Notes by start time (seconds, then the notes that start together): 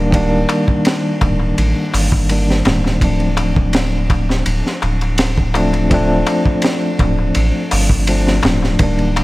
Already playing: D1 D#3 G3 A#3 D4
0.11 D#3 G3 A#3, kick, ride, darbuka tek
0.15 D4
0.49 ride, darbuka tek
0.67 kick, darbuka tek
0.85 snare, ride, darbuka tek
1.21 D1, kick, ride, darbuka tek, darbuka dum
1.39 darbuka tek
1.58 A1, ride, darbuka tek
1.94 G1, open hi-hat, darbuka tek
2.12 kick, darbuka tek
2.29 D#3 G3 A#3 D4, ride, darbuka tek
2.50 snare
2.65 D1, snare, ride, darbuka tek, darbuka dum
2.84 snare, darbuka tek
3.01 D1 F3 A3 C4 D4, kick, ride, darbuka tek
3.20 ride
3.37 ride, darbuka tek
3.56 kick, darbuka tek
3.73 snare, ride, darbuka tek
4.10 kick, ride, darbuka tek
4.29 snare, darbuka tek
4.46 D1, ride, darbuka tek
4.66 snare
4.82 D1, ride, darbuka tek
5.01 ride, darbuka tek
5.18 snare, ride, darbuka tek
5.38 kick
5.54 F3 A3 C4 D4, ride, darbuka tek
5.73 ride, darbuka tek
5.90 F3 A3 C4, kick, ride, darbuka tek
5.94 D4
6.26 ride, darbuka tek
6.46 kick, darbuka tek
6.62 snare, ride, darbuka tek
6.99 D1, kick, ride, darbuka tek, darbuka dum
7.18 darbuka tek
7.35 A1, ride, darbuka tek
7.71 G1, open hi-hat, darbuka tek
7.90 kick, darbuka tek
8.07 F3 A3 C4 D4, ride, darbuka tek
8.27 snare
8.43 D1, snare, ride, darbuka tek, darbuka dum
8.62 snare, darbuka tek
8.79 D1 D#3 G3 A#3, kick, ride, darbuka tek
8.83 D4
8.99 ride
9.16 ride, darbuka tek